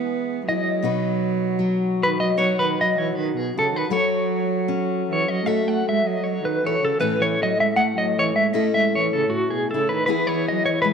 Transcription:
Already playing: steel-string acoustic guitar E3 G#3 B3 E4 G#4, cello B3, clean electric guitar G#5
0.49 cello F#3, steel-string acoustic guitar E4, clean electric guitar D#5
0.82 steel-string acoustic guitar B2 D#4 F#4 B4
1.59 steel-string acoustic guitar F#3
2.03 cello D#3, clean electric guitar B4
2.20 cello F#3, clean electric guitar D#5
2.37 cello F#3, steel-string acoustic guitar D#4 F#4 B4, clean electric guitar C#5
2.59 cello D#3, clean electric guitar B4
2.81 cello F#3, clean electric guitar D#5
2.98 cello E3, clean electric guitar C#5
3.15 cello D#3, clean electric guitar B4
3.36 cello B2, clean electric guitar G#4
3.57 cello C#3, steel-string acoustic guitar F#4, clean electric guitar A4
3.73 cello D#3, clean electric guitar B4
3.90 steel-string acoustic guitar F#3 F#4 A4, cello F#3, clean electric guitar C#5
4.68 steel-string acoustic guitar C#4
5.11 cello E3, clean electric guitar C#5
5.28 cello F#3, clean electric guitar D#5
5.44 cello A3, steel-string acoustic guitar F#4 A4, clean electric guitar E5
5.66 cello A3, clean electric guitar F#5
5.88 cello G#3, clean electric guitar E5
6.04 cello F#3, clean electric guitar D#5
6.21 cello F#3, clean electric guitar C#5
6.44 cello D#3, clean electric guitar B4
6.64 cello E3, steel-string acoustic guitar A4, clean electric guitar C#5
6.82 cello C#3, clean electric guitar A4
6.98 steel-string acoustic guitar A2 C#4 E4 A4, cello E3, clean electric guitar B4
7.20 cello E3, clean electric guitar C#5
7.41 cello F#3, clean electric guitar D#5
7.59 cello G#3, clean electric guitar E5
7.75 cello A3, steel-string acoustic guitar A3, clean electric guitar F#5
7.96 cello F#3, clean electric guitar D#5
8.19 cello E3, clean electric guitar C#5
8.35 cello G#3, clean electric guitar E5
8.53 cello A3, steel-string acoustic guitar C#4 E4 A4, clean electric guitar D#5
8.74 cello G#3, clean electric guitar E5
8.95 cello E3, clean electric guitar C#5
9.13 cello C#3, clean electric guitar A4
9.30 cello A2, clean electric guitar F#4
9.50 cello B2, clean electric guitar G#4
9.71 cello C#3, steel-string acoustic guitar E4, clean electric guitar A4
9.89 cello D#3, clean electric guitar B4
10.06 steel-string acoustic guitar E3 B3 E4 G#4, cello E3, clean electric guitar B4
10.27 cello E3, clean electric guitar C#5
10.48 cello F#3, clean electric guitar D#5
10.66 cello E3, clean electric guitar C#5
10.82 cello E3, steel-string acoustic guitar G#3, clean electric guitar B4

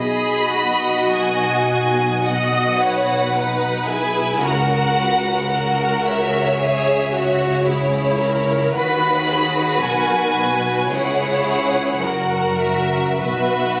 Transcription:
0.00 double bass section B1, cello section B2, viola section G#4, violin section G#4 D#5 B5
0.57 violin section F#4, viola section F#4
1.14 violin section G#5
2.24 violin section F#4 D#5 F#5, viola section D#5
2.80 violin section B4, viola section C#5
3.35 violin section D#4, viola section B4
3.87 violin section E4 G#5, viola section G#4
4.40 double bass section C#2, cello section C#3, violin section F#4 A#4 F#5, viola section A#4
4.96 viola section B4
5.50 violin section F#4 A#4, viola section A#4
6.06 violin section C#5 E5
6.58 viola section G#4, violin section G#4
7.12 viola section F#4, violin section F#4
7.66 violin section E4 C#5, viola section G#4
8.21 viola section A#4
8.75 double bass section D#2, cello section D#3, violin section F#4 B4 B5, viola section B4
9.29 viola section G#4
9.82 double bass section B1, cello section B2, viola section A#4, violin section G#5
10.36 viola section B4
10.90 double bass section C#2, cello section C#3, violin section E4 G#4 F#5, viola section C#5
12.00 double bass section F#1, cello section F#2, violin section F#4 A#4, viola section A#4
12.58 violin section E5
13.20 double bass section B1, cello section B2, violin section F#4 B4 E5, viola section B4

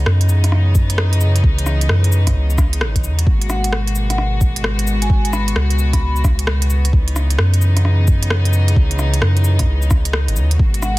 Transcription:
Already playing: string section C#3 E3 B3 D#4
0.06 sub bass F#2, cross-stick
0.21 closed hi-hat
0.29 cabasa
0.44 cross-stick, closed hi-hat
0.52 cross-stick
0.75 kick, cabasa
0.90 closed hi-hat
0.98 cross-stick
1.13 closed hi-hat
1.21 cabasa
1.36 closed hi-hat
1.44 sub bass C#2, kick
1.58 closed hi-hat
1.66 cross-stick, cabasa
1.81 closed hi-hat
1.89 sub bass F#2, cross-stick
2.04 closed hi-hat
2.12 cabasa
2.27 kick, cross-stick, closed hi-hat
2.35 sub bass C#2
2.50 cabasa
2.58 kick, cross-stick, cabasa
2.73 closed hi-hat
2.81 sub bass G#1, cross-stick
2.96 kick, closed hi-hat
3.04 sub bass E2, cabasa
3.19 closed hi-hat
3.26 sub bass G#1, string section B2 G#3 A#3 F#4, kick
3.42 closed hi-hat
3.50 vibraphone F#5, cross-stick, cabasa
3.64 closed hi-hat
3.73 cross-stick
3.87 closed hi-hat
3.95 cabasa
4.10 vibraphone F#5, cross-stick, closed hi-hat
4.18 cross-stick
4.41 kick, cabasa
4.56 closed hi-hat
4.64 cross-stick
4.79 closed hi-hat
4.87 cabasa
5.02 vibraphone G#5, closed hi-hat
5.09 sub bass G#1, string section B3, kick
5.25 closed hi-hat
5.33 vibraphone B5, cross-stick, cabasa
5.48 closed hi-hat
5.56 sub bass C#2, cross-stick
5.70 closed hi-hat
5.79 cabasa
5.93 vibraphone B5, kick, cross-stick, closed hi-hat
6.02 vibraphone B5
6.16 cabasa
6.24 kick, cross-stick, cabasa
6.39 closed hi-hat
6.47 cross-stick
6.62 closed hi-hat
6.70 cabasa
6.85 closed hi-hat
6.93 string section C#3 E3 D#4, kick
7.08 closed hi-hat
7.16 cross-stick, cabasa
7.30 closed hi-hat
7.39 sub bass F#2, cross-stick
7.54 closed hi-hat
7.62 cabasa
7.77 cross-stick, closed hi-hat
7.85 cross-stick
8.08 kick, cabasa
8.23 closed hi-hat
8.30 cross-stick
8.45 closed hi-hat
8.53 cabasa
8.68 closed hi-hat
8.76 sub bass C#2, kick
8.91 closed hi-hat
8.99 cross-stick, cabasa
9.14 closed hi-hat
9.22 sub bass F#2, cross-stick
9.37 closed hi-hat
9.44 cabasa
9.59 kick, cross-stick, closed hi-hat
9.68 sub bass C#2
9.82 cabasa
9.91 kick, cross-stick, cabasa
10.05 closed hi-hat
10.13 cross-stick
10.28 sub bass G#1, closed hi-hat
10.36 sub bass D#2, cabasa
10.51 closed hi-hat
10.59 sub bass G#1, string section B2 G#3 A#3 F#4, kick
10.74 closed hi-hat
10.82 vibraphone F#5, cross-stick, cabasa

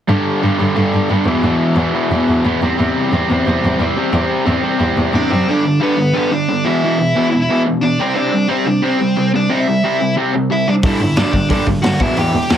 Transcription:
0.08 overdriven electric guitar G2 D3 G3, cello G2
0.42 overdriven electric guitar G2 D3 G3, cello G2
0.59 overdriven electric guitar G2 D3 G3, cello G2
0.75 overdriven electric guitar G2 D3 G3, cello G2
0.93 cello G2
1.09 cello G2, overdriven electric guitar G2 D3 G3
1.25 cello E2, overdriven electric guitar E2 B2 E3
1.43 cello E2, overdriven electric guitar E2 B2 E3
1.76 cello E2, overdriven electric guitar E2 B2 E3
1.94 overdriven electric guitar E2 B2 E3
2.11 cello E2, overdriven electric guitar E2 B2 E3
2.29 cello E2
2.44 cello E2, overdriven electric guitar E2 B2 E3
2.62 cello E2, overdriven electric guitar C3 G3 C4
2.77 cello E2, overdriven electric guitar C3 G3 C4
3.12 cello E2, overdriven electric guitar C3 G3 C4
3.29 cello E2, overdriven electric guitar C3 G3 C4
3.47 cello E2, overdriven electric guitar C3 G3 C4
3.65 cello E2
3.80 cello E2, overdriven electric guitar C3 G3 C4
3.97 overdriven electric guitar C3 G3 C4
4.13 cello E2, overdriven electric guitar C3 G3 C4
4.46 cello E2, overdriven electric guitar C3 G3 C4
4.63 overdriven electric guitar C3 G3 C4
4.79 cello E2, overdriven electric guitar C3 G3 C4
4.97 cello E2
5.13 cello E2, overdriven electric guitar C3 G3 C4, lead electric guitar D4 D5
5.29 cello F#2, overdriven electric guitar C3 G3 C4, lead electric guitar C4 C5
5.47 overdriven electric guitar G2 D3 G3, lead electric guitar D4 D5
5.64 overdriven electric guitar G2 D3
5.80 overdriven electric guitar G2 D3 G3, lead electric guitar B3 B4
5.97 overdriven electric guitar G2 D3
6.14 overdriven electric guitar G2 D3 G3, lead electric guitar B3
6.18 lead electric guitar B4
6.31 overdriven electric guitar G2 D3, lead electric guitar D4 D5
6.49 overdriven electric guitar G2 D3
6.65 overdriven electric guitar E2 B2 E3, lead electric guitar E4 E5
6.84 overdriven electric guitar E2 B2 E3
7.00 overdriven electric guitar E2 B2
7.16 overdriven electric guitar E2 B2 E3
7.32 overdriven electric guitar E2 B2
7.49 overdriven electric guitar E2 B2 E3
7.67 overdriven electric guitar E2 B2
7.81 overdriven electric guitar E2 B2, lead electric guitar D4 D5
7.99 overdriven electric guitar C3 G3 C4, lead electric guitar C4 C5
8.15 overdriven electric guitar C3 G3 C4, lead electric guitar D4 D5
8.32 overdriven electric guitar C3 G3
8.48 overdriven electric guitar C3 G3 C4, lead electric guitar C4 C5
8.65 overdriven electric guitar C3 G3, lead electric guitar D4 D5
8.82 overdriven electric guitar C3 G3 C4, lead electric guitar C4 C5
8.99 overdriven electric guitar C3 G3
9.16 overdriven electric guitar C3 G3
9.34 overdriven electric guitar C3 G3, lead electric guitar D4 D5
9.49 overdriven electric guitar C3 G3 C4, lead electric guitar E4 E5
9.67 overdriven electric guitar C3 G3
9.84 overdriven electric guitar C3 G3 C4
10.01 overdriven electric guitar C3 G3
10.16 overdriven electric guitar C3 G3 C4
10.35 overdriven electric guitar C3 G3
10.50 overdriven electric guitar C3 G3, lead electric guitar E4 E5
10.68 overdriven electric guitar C3 G3, lead electric guitar D4 D5
10.83 cello G2, overdriven electric guitar G2 D3 G3, lead electric guitar E4 E5, kick, open hi-hat
10.99 cello G2, overdriven electric guitar G2 D3
11.16 cello G2, overdriven electric guitar G2 D3 G3, lead electric guitar D4 D5, snare, open hi-hat
11.33 overdriven electric guitar G2 D3, cello G2, kick
11.49 cello G2, overdriven electric guitar G2 D3 G3, lead electric guitar D4 D5, kick, open hi-hat
11.67 overdriven electric guitar G2 D3, cello G2, kick
11.82 overdriven electric guitar G2 D3, cello G2, lead electric guitar F#4 F#5, snare, open hi-hat
12.00 cello E2, overdriven electric guitar E2 B2 E3, lead electric guitar E4 E5, kick
12.17 overdriven electric guitar E2 B2 E3, cello E2, lead electric guitar G4 G5, open hi-hat
12.33 overdriven electric guitar E2 B2, cello E2
12.49 overdriven electric guitar E2 B2 E3, cello E2, lead electric guitar E5, snare, open hi-hat
12.54 lead electric guitar E4

